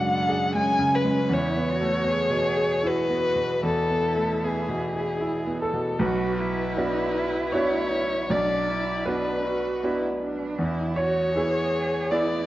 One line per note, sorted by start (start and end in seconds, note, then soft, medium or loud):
0.00 1.27 F#2 medium
0.00 1.33 B2 soft
0.00 0.79 C#3 medium
0.00 0.20 G#3 medium
0.00 0.56 D4 medium
0.00 0.54 F#5 loud
0.29 0.70 G#4 medium
0.55 0.95 G#3 soft
0.55 1.33 C#4 medium
0.55 0.96 G#5 loud
0.79 1.20 C#3 medium
0.95 1.34 B4 medium
1.04 1.30 G#3 soft
1.29 3.59 E2 medium
1.29 1.72 E4 medium
1.29 2.88 C#5 medium
1.56 1.97 B3 medium
1.70 2.10 F#4 medium
1.81 2.07 A3 soft
2.04 2.47 B3 soft
2.09 2.89 G#4 medium
2.30 2.73 B2 soft
2.57 2.99 G#4 soft
2.83 3.26 E4 soft
2.83 3.65 B4 medium
2.87 3.64 F#4 medium
3.09 3.52 B3 soft
3.36 3.79 B2 soft
3.63 5.95 E2 medium
3.63 5.57 E4 medium
3.63 4.46 A4 medium
3.90 4.32 B3 soft
4.15 4.42 A3 soft
4.44 4.85 B3 soft
4.44 5.61 G#4 medium
4.69 5.11 B2 soft
4.95 5.37 G#4 soft
5.21 5.63 E4 soft
5.47 5.89 B3 soft
5.62 5.97 A4 medium
5.62 6.03 A4 medium
5.73 5.99 B2 soft
5.99 6.74 B1 medium
5.99 6.41 F#4 medium
5.99 7.50 B4 medium
5.99 7.54 B4 medium
6.40 8.30 E4 medium
6.77 7.50 B3 soft
6.77 7.50 D4 soft
6.77 7.50 F#4 medium
7.52 8.26 B3 soft
7.52 8.26 D4 soft
7.52 8.26 F#4 medium
7.52 8.25 C#5 medium
7.52 8.33 C#5 medium
8.30 9.04 B1 medium
8.30 8.71 D4 medium
8.30 9.03 D5 medium
8.30 9.09 D5 medium
8.70 9.10 E4 medium
9.05 9.78 B3 soft
9.05 9.79 D4 soft
9.05 9.47 D4 medium
9.05 9.79 F#4 soft
9.05 10.16 B4 medium
9.05 10.21 B4 medium
9.46 9.86 F#4 medium
9.83 10.55 B3 soft
9.83 10.55 D4 soft
9.83 10.21 E4 medium
9.83 10.55 F#4 soft
10.23 10.62 D4 medium
10.59 11.32 E2 medium
10.59 11.01 E4 medium
10.96 11.35 F#4 medium
10.96 12.06 C#5 medium
10.96 12.13 C#5 medium
11.36 12.07 B3 soft
11.36 12.07 E4 soft
11.36 12.13 G#4 medium
11.36 12.07 G#4 soft
12.11 12.46 B3 soft
12.11 12.46 E4 medium
12.11 12.46 E4 soft
12.11 12.46 G#4 soft
12.11 12.46 D5 medium